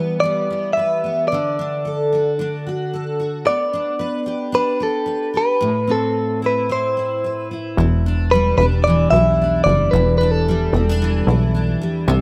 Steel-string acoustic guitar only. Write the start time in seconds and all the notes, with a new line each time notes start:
Already playing: E3 G3 B3 B4
0.24 G3
0.50 B3
0.77 B4
1.04 B3
1.32 D3
1.59 D4
1.85 A4
2.13 F#4
2.39 D4
2.66 F#4
2.94 A4
3.20 F#4
3.46 B3
3.73 D4
3.99 B4
4.26 G4
4.52 D4
4.80 G4
5.06 B4
5.34 G4
5.61 A2
5.87 C4
6.42 E4
6.69 C4
6.97 E4
7.24 B4
7.51 E4
7.78 E2
8.06 D4
8.33 G3
8.60 D4
8.87 E3
9.14 E4
9.42 D4
9.67 G3
9.93 E2
10.21 D4
10.48 G3
10.74 C4
10.89 D4
11.02 E3
11.28 E4
11.55 D4
11.81 G3
12.08 C3